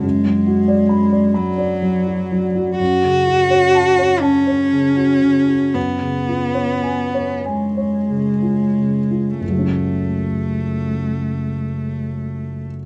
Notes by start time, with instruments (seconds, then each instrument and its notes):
0.03 grand piano F#2, cello G#3
0.25 grand piano F#3
0.47 grand piano F#4
0.68 grand piano D5
0.89 grand piano B5
1.12 grand piano D5
1.34 cello F#3, grand piano B5
1.58 grand piano D5
1.82 grand piano F#3
2.06 grand piano F#4
2.32 grand piano F#3
2.55 grand piano F#4
2.78 grand piano F#2, cello F#4
3.03 grand piano C#3
3.27 grand piano F#4
3.50 grand piano C#5
3.75 grand piano A5
3.99 grand piano C#5
4.21 cello C#4, grand piano A5
4.47 grand piano C#5
4.72 grand piano C#3
4.96 grand piano F#4
5.22 grand piano C#3
5.48 grand piano F#4
5.74 grand piano F#2, cello B3
6.01 grand piano C#3
6.28 grand piano F4
6.54 grand piano C#5
6.83 grand piano G#5
7.14 grand piano C#5
7.45 cello G#3, grand piano G#5
7.77 grand piano C#5
8.09 grand piano C#3
8.42 grand piano F4
8.78 grand piano C#3
9.11 grand piano F4
9.41 grand piano F#1, cello A3
9.46 grand piano C#2
9.50 grand piano F#3
9.54 grand piano A3
9.58 grand piano C#4
9.63 grand piano F#4